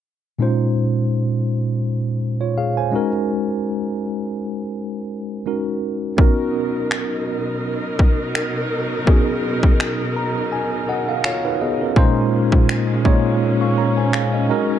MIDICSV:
0, 0, Header, 1, 4, 480
1, 0, Start_track
1, 0, Key_signature, -5, "minor"
1, 0, Tempo, 722892
1, 264, Time_signature, 4, 2, 24, 8
1, 9821, End_track
2, 0, Start_track
2, 0, Title_t, "Tine electric piano"
2, 0, Program_c, 0, 4
2, 256, Note_on_c, 0, 46, 68
2, 263, Note_on_c, 0, 56, 58
2, 267, Note_on_c, 0, 61, 64
2, 272, Note_on_c, 0, 63, 62
2, 279, Note_on_c, 0, 65, 59
2, 282, Note_on_c, 0, 72, 75
2, 399, Control_c, 0, 64, 127
2, 1448, Note_off_c, 0, 65, 0
2, 1449, Note_off_c, 0, 72, 0
2, 1598, Note_on_c, 0, 73, 56
2, 1601, Note_on_c, 0, 65, 52
2, 1701, Note_off_c, 0, 73, 0
2, 1702, Note_off_c, 0, 65, 0
2, 1711, Note_on_c, 0, 77, 65
2, 1713, Note_on_c, 0, 68, 54
2, 1831, Note_off_c, 0, 77, 0
2, 1832, Note_off_c, 0, 68, 0
2, 1841, Note_on_c, 0, 80, 64
2, 1846, Note_on_c, 0, 72, 56
2, 1914, Note_off_c, 0, 46, 0
2, 1917, Note_off_c, 0, 56, 0
2, 1919, Note_off_c, 0, 61, 0
2, 1921, Note_off_c, 0, 63, 0
2, 1937, Note_on_c, 0, 56, 73
2, 1943, Note_on_c, 0, 61, 61
2, 1950, Note_on_c, 0, 63, 63
2, 1953, Control_c, 0, 64, 0
2, 1957, Note_on_c, 0, 66, 62
2, 1963, Note_on_c, 0, 70, 75
2, 2066, Note_off_c, 0, 80, 0
2, 2068, Note_off_c, 0, 72, 0
2, 2069, Control_c, 0, 64, 127
2, 3594, Note_off_c, 0, 56, 0
2, 3597, Note_off_c, 0, 61, 0
2, 3600, Note_off_c, 0, 63, 0
2, 3604, Note_off_c, 0, 66, 0
2, 3607, Note_off_c, 0, 70, 0
2, 3624, Note_on_c, 0, 56, 55
2, 3628, Note_on_c, 0, 61, 49
2, 3631, Note_on_c, 0, 63, 51
2, 3632, Note_on_c, 0, 66, 48
2, 3636, Note_on_c, 0, 70, 58
2, 4096, Note_on_c, 0, 59, 68
2, 4097, Note_off_c, 0, 61, 0
2, 4102, Note_off_c, 0, 63, 0
2, 4104, Note_off_c, 0, 56, 0
2, 4105, Note_on_c, 0, 61, 68
2, 4108, Note_off_c, 0, 66, 0
2, 4110, Note_off_c, 0, 70, 0
2, 4110, Note_on_c, 0, 63, 61
2, 4113, Control_c, 0, 64, 0
2, 4117, Note_on_c, 0, 66, 61
2, 4122, Note_on_c, 0, 70, 75
2, 4212, Control_c, 0, 64, 127
2, 5994, Note_off_c, 0, 59, 0
2, 5998, Note_off_c, 0, 61, 0
2, 6001, Note_off_c, 0, 63, 0
2, 6004, Note_off_c, 0, 66, 0
2, 6007, Note_off_c, 0, 70, 0
2, 6013, Note_on_c, 0, 59, 70
2, 6018, Note_on_c, 0, 61, 62
2, 6026, Note_on_c, 0, 63, 61
2, 6032, Note_on_c, 0, 66, 62
2, 6039, Note_on_c, 0, 68, 82
2, 6749, Note_on_c, 0, 82, 66
2, 6970, Note_off_c, 0, 82, 0
2, 6987, Note_on_c, 0, 80, 66
2, 7194, Note_off_c, 0, 59, 0
2, 7197, Note_off_c, 0, 61, 0
2, 7201, Note_off_c, 0, 63, 0
2, 7204, Note_off_c, 0, 66, 0
2, 7208, Note_off_c, 0, 68, 0
2, 7209, Note_off_c, 0, 80, 0
2, 7230, Note_on_c, 0, 78, 67
2, 7231, Note_on_c, 0, 75, 58
2, 7234, Note_on_c, 0, 66, 47
2, 7348, Note_off_c, 0, 78, 0
2, 7362, Note_on_c, 0, 77, 64
2, 7456, Note_off_c, 0, 75, 0
2, 7457, Note_off_c, 0, 66, 0
2, 7461, Note_off_c, 0, 77, 0
2, 7471, Note_on_c, 0, 77, 74
2, 7472, Note_on_c, 0, 73, 67
2, 7474, Note_on_c, 0, 65, 59
2, 7591, Note_off_c, 0, 73, 0
2, 7592, Note_off_c, 0, 65, 0
2, 7601, Note_on_c, 0, 71, 71
2, 7605, Note_on_c, 0, 63, 64
2, 7691, Note_off_c, 0, 77, 0
2, 7702, Note_off_c, 0, 71, 0
2, 7705, Note_off_c, 0, 63, 0
2, 7711, Note_on_c, 0, 75, 69
2, 7713, Note_on_c, 0, 68, 69
2, 7717, Note_on_c, 0, 59, 55
2, 7832, Note_off_c, 0, 68, 0
2, 7834, Note_off_c, 0, 59, 0
2, 7842, Note_on_c, 0, 70, 57
2, 7845, Note_on_c, 0, 61, 47
2, 7931, Note_off_c, 0, 75, 0
2, 7939, Note_off_c, 0, 61, 0
2, 7942, Note_on_c, 0, 46, 97
2, 7945, Note_on_c, 0, 56, 97
2, 7947, Note_on_c, 0, 61, 91
2, 7950, Note_on_c, 0, 63, 93
2, 7952, Note_on_c, 0, 65, 89
2, 7954, Control_c, 0, 64, 0
2, 7955, Note_on_c, 0, 72, 110
2, 8066, Note_off_c, 0, 70, 0
2, 8073, Control_c, 0, 64, 127
2, 8541, Note_off_c, 0, 46, 0
2, 8543, Note_off_c, 0, 56, 0
2, 8544, Note_off_c, 0, 61, 0
2, 8545, Note_off_c, 0, 63, 0
2, 8546, Note_off_c, 0, 65, 0
2, 8548, Note_off_c, 0, 72, 0
2, 8660, Note_on_c, 0, 46, 80
2, 8663, Note_on_c, 0, 56, 79
2, 8665, Note_on_c, 0, 61, 70
2, 8669, Note_on_c, 0, 63, 75
2, 8670, Note_on_c, 0, 65, 75
2, 8673, Note_on_c, 0, 73, 92
2, 8908, Note_off_c, 0, 73, 0
2, 9038, Note_on_c, 0, 85, 59
2, 9041, Note_on_c, 0, 77, 51
2, 9141, Note_off_c, 0, 85, 0
2, 9142, Note_off_c, 0, 77, 0
2, 9149, Note_on_c, 0, 82, 66
2, 9153, Note_on_c, 0, 73, 55
2, 9270, Note_off_c, 0, 82, 0
2, 9272, Note_off_c, 0, 73, 0
2, 9278, Note_on_c, 0, 80, 66
2, 9283, Note_on_c, 0, 72, 53
2, 9381, Note_off_c, 0, 80, 0
2, 9383, Note_off_c, 0, 72, 0
2, 9387, Note_on_c, 0, 77, 66
2, 9391, Note_on_c, 0, 68, 56
2, 9454, Note_off_c, 0, 46, 0
2, 9455, Note_off_c, 0, 56, 0
2, 9456, Note_off_c, 0, 61, 0
2, 9458, Note_off_c, 0, 63, 0
2, 9459, Note_off_c, 0, 65, 0
2, 9509, Note_off_c, 0, 77, 0
2, 9511, Note_off_c, 0, 68, 0
2, 9520, Note_on_c, 0, 75, 59
2, 9623, Note_on_c, 0, 56, 83
2, 9625, Note_on_c, 0, 61, 76
2, 9627, Note_on_c, 0, 63, 80
2, 9632, Note_on_c, 0, 66, 82
2, 9633, Control_c, 0, 64, 0
2, 9634, Note_on_c, 0, 70, 97
2, 9739, Control_c, 0, 64, 127
2, 9745, Note_off_c, 0, 75, 0
2, 9821, Note_off_c, 0, 56, 0
2, 9821, Note_off_c, 0, 61, 0
2, 9821, Note_off_c, 0, 63, 0
2, 9821, Note_off_c, 0, 66, 0
2, 9821, Note_off_c, 0, 70, 0
2, 9821, End_track
3, 0, Start_track
3, 0, Title_t, "String section"
3, 0, Program_c, 1, 48
3, 4106, Note_on_c, 1, 54, 64
3, 4107, Note_on_c, 1, 47, 73
3, 4107, Note_on_c, 1, 70, 84
3, 4108, Note_on_c, 1, 63, 63
3, 7918, Note_off_c, 1, 54, 0
3, 7919, Note_off_c, 1, 47, 0
3, 7919, Note_off_c, 1, 63, 0
3, 7919, Note_off_c, 1, 70, 0
3, 7945, Note_on_c, 1, 61, 84
3, 7946, Note_on_c, 1, 56, 68
3, 7947, Note_on_c, 1, 58, 65
3, 9608, Note_off_c, 1, 56, 0
3, 9609, Note_off_c, 1, 58, 0
3, 9622, Note_on_c, 1, 63, 65
3, 9624, Note_on_c, 1, 54, 72
3, 9625, Note_on_c, 1, 70, 80
3, 9821, Note_off_c, 1, 54, 0
3, 9821, Note_off_c, 1, 61, 0
3, 9821, Note_off_c, 1, 63, 0
3, 9821, Note_off_c, 1, 70, 0
3, 9821, End_track
4, 0, Start_track
4, 0, Title_t, "Drums"
4, 4104, Note_on_c, 9, 36, 108
4, 4171, Note_off_c, 9, 36, 0
4, 4589, Note_on_c, 9, 26, 113
4, 4655, Note_off_c, 9, 26, 0
4, 5306, Note_on_c, 9, 36, 83
4, 5373, Note_off_c, 9, 36, 0
4, 5546, Note_on_c, 9, 26, 108
4, 5612, Note_off_c, 9, 26, 0
4, 6024, Note_on_c, 9, 36, 107
4, 6090, Note_off_c, 9, 36, 0
4, 6395, Note_on_c, 9, 36, 86
4, 6461, Note_off_c, 9, 36, 0
4, 6508, Note_on_c, 9, 26, 117
4, 6574, Note_off_c, 9, 26, 0
4, 7464, Note_on_c, 9, 26, 109
4, 7531, Note_off_c, 9, 26, 0
4, 7943, Note_on_c, 9, 36, 106
4, 8009, Note_off_c, 9, 36, 0
4, 8315, Note_on_c, 9, 36, 91
4, 8381, Note_off_c, 9, 36, 0
4, 8428, Note_on_c, 9, 26, 117
4, 8494, Note_off_c, 9, 26, 0
4, 8666, Note_on_c, 9, 36, 89
4, 8732, Note_off_c, 9, 36, 0
4, 9385, Note_on_c, 9, 26, 109
4, 9451, Note_off_c, 9, 26, 0
4, 9821, End_track
0, 0, End_of_file